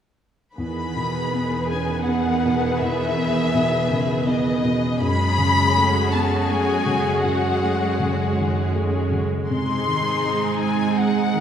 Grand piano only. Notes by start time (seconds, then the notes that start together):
0.58 E2
0.96 B2
1.33 B3
1.70 C#4
2.07 B3
2.45 B2
2.80 E2
3.17 B3
3.54 B2
3.90 C#3
4.27 B3
4.63 B2
5.02 F#2
5.38 C#3
5.76 A3
6.13 B3
6.50 A3
6.86 C#3
7.24 F#2
7.61 A3
7.99 C#3
8.37 D#3
8.74 A3
9.11 C#3
9.50 C3
9.86 D#3
10.23 G#3
10.59 G#3
10.96 G#3
11.34 D#3